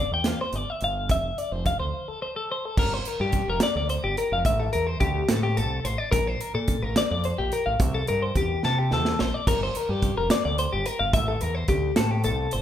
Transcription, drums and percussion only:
0.24 snare, closed hi-hat
0.53 closed hi-hat
0.81 closed hi-hat
1.09 kick, closed hi-hat
1.38 closed hi-hat
1.66 kick, closed hi-hat
2.77 kick, crash
3.05 closed hi-hat
3.32 kick, closed hi-hat
3.60 snare, closed hi-hat
3.89 closed hi-hat
4.17 closed hi-hat
4.45 kick, closed hi-hat
4.73 closed hi-hat
5.00 kick, closed hi-hat
5.29 snare, closed hi-hat
5.57 closed hi-hat
5.85 closed hi-hat
6.12 kick, closed hi-hat
6.41 closed hi-hat
6.68 kick, closed hi-hat
6.96 snare, closed hi-hat
7.24 closed hi-hat
7.52 closed hi-hat
7.80 kick, closed hi-hat
8.07 closed hi-hat
8.35 kick, closed hi-hat
8.63 snare
8.91 snare
9.05 snare
9.19 snare
9.47 kick, closed hi-hat, crash
9.75 closed hi-hat
10.02 kick, closed hi-hat
10.30 snare, closed hi-hat
10.58 closed hi-hat
10.86 closed hi-hat
11.13 kick, closed hi-hat
11.41 closed hi-hat
11.68 kick, closed hi-hat
11.96 snare, closed hi-hat
12.24 closed hi-hat
12.51 closed hi-hat

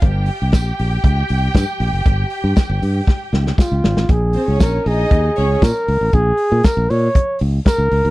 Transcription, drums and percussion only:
0.02 kick, closed hi-hat
0.26 open hi-hat
0.52 kick, snare, closed hi-hat, tambourine
0.79 open hi-hat
1.04 kick, closed hi-hat
1.29 open hi-hat
1.55 kick, snare, closed hi-hat, tambourine
1.81 open hi-hat
2.06 kick, closed hi-hat
2.30 open hi-hat
2.56 kick, snare, closed hi-hat, tambourine
2.83 open hi-hat
3.07 kick, snare
3.34 snare
3.47 snare
3.58 kick, snare, tambourine
3.84 snare
3.97 snare
4.09 kick, closed hi-hat
4.33 open hi-hat
4.60 kick, snare, closed hi-hat, tambourine
4.87 open hi-hat
5.11 kick, closed hi-hat
5.36 open hi-hat
5.62 kick, snare, closed hi-hat, tambourine
5.88 open hi-hat
6.13 kick, closed hi-hat
6.37 open hi-hat
6.64 kick, snare, closed hi-hat, tambourine
6.90 open hi-hat
7.15 kick, closed hi-hat
7.39 open hi-hat
7.66 kick, snare, closed hi-hat, tambourine
7.92 open hi-hat

